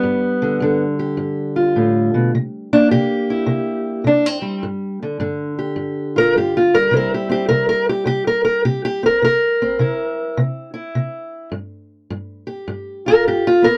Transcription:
steel-string acoustic guitar
Already playing: G3 B3
0.03 G2
0.42 D3
0.60 G2 D3
0.99 G4
1.17 G2
1.56 F4
1.76 A2
2.14 B2
2.35 C3
2.73 A#3 D4
2.91 C3 G4
3.30 E4
3.46 C3
4.04 C3 D4
4.26 C4
4.42 G3
4.63 G2
5.03 D3
5.20 G2 D3
5.59 G4
5.76 G2
6.16 F4 A#4
6.36 G2 G4
6.57 F4
6.74 G3 A#4
6.91 C3 G3 C4 E4
6.97 A#4
7.14 G4
7.29 C4 G4
7.49 C3 A#4
7.69 A#4
7.89 G4
8.06 C3 G4
8.27 A#4
8.45 A#4
8.65 C3 G4
8.85 G4
9.03 C4 A#4
9.22 C3 A#4
9.62 C4
9.79 C3 E4
10.37 C3
10.74 E4
10.95 C3
11.52 G2
12.10 G2
12.47 G4
12.68 G2
13.06 F4 A#4
13.27 G2 G4
13.47 F4
13.62 B3 A#4

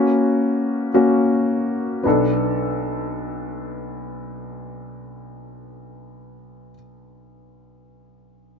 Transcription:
grand piano
Already playing: A#3 C#4 F#4 B4
0.94 A#3 C#4 F#4
2.03 B1 B3 D4 A4

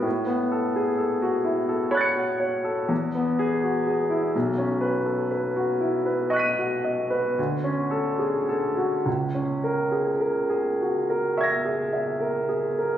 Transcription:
grand piano
0.02 A2
0.26 B3
0.52 A4
0.76 G#4
0.98 A4
1.22 F#4
1.45 E4
1.69 A4
1.91 C#5 B5 F#6
1.97 A6 C#7
2.15 F#4
2.40 C#5
2.64 A4
2.89 E2
3.15 B3
3.39 G#4
3.63 F#4
3.87 G#4
4.10 E4
4.36 B1
4.58 C#4
4.81 B4
5.05 A4
5.31 B4
5.56 F#4
5.81 E4
6.06 B4
6.30 D#5 C#6 F#6
6.36 B6 D#7
6.58 F#4
6.84 D#5
7.10 B4
7.38 D2
7.64 C#4
7.91 A4
8.19 G#4
8.49 A4
8.77 F#4
9.06 C#2
9.35 C#4
9.64 A#4
9.92 G#4
10.21 A#4
10.50 G#4
10.81 F#4
11.10 A#4
11.37 E5 C#6 G#6
11.43 A#6
11.65 G#4
11.93 E5
12.20 A#4
12.49 G#4
12.79 A#4

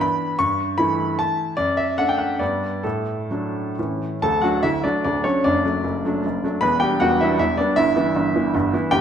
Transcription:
grand piano
Already playing: E3 B3 D4
0.01 B5
0.39 G2 C#6
0.78 E3 A3 E4 B5
1.19 A5
1.57 F#2 D5
1.77 E5
1.98 A3 D4 F#5
2.09 G5
2.18 F#5
2.39 G2 G3 B3 D4 D5
2.83 A2 A4
3.31 F#3 A3 D4
3.79 A2 E3 A3 C#4
4.22 D1 D2 A4 A5
4.42 F#3 A3 D4 F#4 F#5
4.63 D1 D2 E4 E5
4.84 F#3 A3 D4 D5
5.04 D1 D2 D4 D5
5.24 F#3 A3 C#4 D4 C#5
5.44 F#1 F#2 D4 D5
5.65 F#3 A3 D4
5.84 F#1 F#2
6.05 F#3 A3 D4
6.25 F#1 F#2
6.44 F#3 A3 D4
6.61 E1 E2 B4 B5
6.80 G3 B3 D4 G4 G5
7.00 E1 E2 F#4 F#5
7.21 G3 B3 D4 E4 E5
7.39 E1 E2 E4 E5
7.57 G3 B3 D4 D5
7.76 G1 G2 E4 E5
7.96 E3 B3 E4
8.16 G1 G2
8.36 E3 B3 E4
8.54 G1 G2
8.73 E3 B3 E4
8.91 G1 G2 G4 G5

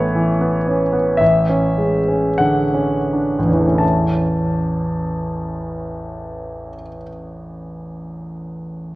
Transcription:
grand piano
Already playing: A1 A3 B3 B4 C#5
0.15 E3
0.41 B3
0.68 C#4
0.93 B3
1.17 A1 E5
1.49 C#4
1.78 G#3
2.08 C#4
2.38 D3 F#5
2.74 C#4
3.13 D4
3.39 A1
3.45 E2 C#4
3.53 E3
3.60 A3
3.67 C#4
3.74 E4 A5

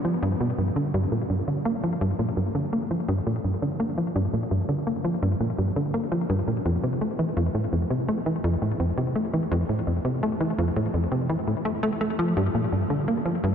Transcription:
analog synth bass
0.05 F3
0.22 G2
0.40 B2
0.58 G2
0.76 D3
0.94 G2
1.12 A#2
1.30 G2
1.48 D3
1.65 A#3
1.84 F3
2.01 G2
2.19 A#2
2.37 G2
2.55 D3
2.73 A#3
2.91 F3
3.08 G2
3.27 A#2
3.44 G2
3.62 D3
3.80 A#3
3.98 F3
4.16 G2
4.33 A#2
4.51 G2
4.69 D3
4.87 A#3
5.04 F3
5.22 G2
5.40 A#2
5.58 G2
5.76 D3
5.94 A#3
6.12 F3
6.30 G2
6.47 A#2
6.65 F2
6.83 C3
7.01 A3
7.19 E3
7.37 F2
7.55 A2
7.73 F2
7.90 C3
8.08 A3
8.26 E3
8.44 F2
8.62 A2
8.80 F2
8.97 C3
9.15 A3
9.33 E3
9.51 F2
9.69 A2
9.87 F2
10.05 C3
10.23 A3
10.40 E3
10.58 F2
10.76 A2
10.94 F2
11.12 C3
11.29 E3
11.47 A2
11.65 A3
11.83 A3
12.01 A3
12.19 F3
12.37 G2
12.55 A#2
12.72 G2
12.90 D3
13.08 A#3
13.25 F3
13.44 G2

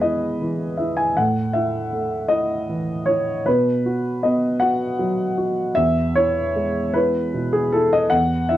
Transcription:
upright piano
Already playing: E2 G#3 E4 G#4 B4
0.01 E4 D#5
0.41 E3
0.77 E4 E5
0.96 G#5
1.16 A2 F#5
1.53 E4 E5
1.93 A3
2.29 E4 D#5
2.70 E3
3.06 E4 C#5
3.46 B2 B4
3.86 F#4
4.23 B3 D#5
4.60 F#4 F#5
4.99 F#3
5.38 F#4
5.75 E2 E5
6.15 E4 C#5
6.56 G#3
6.94 E4 B4
7.34 B2
7.53 G#4
7.72 E4 A4
7.93 D#5
8.10 E2 F#5
8.49 E4 E5

